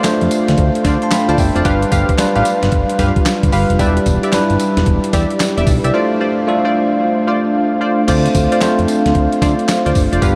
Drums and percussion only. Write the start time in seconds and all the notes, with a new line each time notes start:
0.04 snare, clap, closed hi-hat, tambourine
0.21 closed hi-hat
0.31 closed hi-hat, tambourine
0.48 snare, closed hi-hat
0.58 kick, closed hi-hat
0.75 closed hi-hat
0.85 kick, snare, closed hi-hat, tambourine
1.02 closed hi-hat
1.11 snare, clap, closed hi-hat, tambourine
1.29 closed hi-hat
1.38 kick, open hi-hat, tambourine
1.56 closed hi-hat
1.65 kick, closed hi-hat, tambourine
1.82 closed hi-hat
1.92 kick, closed hi-hat, tambourine
2.09 kick, closed hi-hat
2.18 snare, clap, closed hi-hat, tambourine
2.36 closed hi-hat
2.45 closed hi-hat, tambourine
2.63 snare, closed hi-hat
2.72 kick, closed hi-hat
2.89 closed hi-hat
2.99 kick, snare, closed hi-hat, tambourine
3.16 kick, closed hi-hat
3.26 snare, clap, closed hi-hat, tambourine
3.43 kick, closed hi-hat
3.52 open hi-hat, tambourine
3.70 closed hi-hat
3.79 kick, closed hi-hat, tambourine
3.97 closed hi-hat
4.06 kick, closed hi-hat, tambourine
4.23 closed hi-hat
4.32 snare, clap, closed hi-hat, tambourine
4.50 closed hi-hat
4.60 closed hi-hat, tambourine
4.77 snare, closed hi-hat
4.86 kick, closed hi-hat
5.04 closed hi-hat
5.13 kick, snare, closed hi-hat, tambourine
5.30 closed hi-hat
5.40 snare, clap, closed hi-hat, tambourine
5.58 closed hi-hat
5.67 kick, open hi-hat, tambourine
5.84 closed hi-hat
8.08 kick, closed hi-hat, crash, tambourine
8.26 closed hi-hat
8.35 kick, closed hi-hat, tambourine
8.52 closed hi-hat
8.61 snare, clap, closed hi-hat, tambourine
8.79 closed hi-hat
8.88 closed hi-hat, tambourine
9.06 snare, closed hi-hat
9.15 kick, closed hi-hat
9.32 closed hi-hat
9.42 kick, snare, closed hi-hat, tambourine
9.59 closed hi-hat
9.69 snare, clap, closed hi-hat, tambourine
9.86 closed hi-hat
9.95 kick, open hi-hat, tambourine
10.13 closed hi-hat
10.22 kick, closed hi-hat, tambourine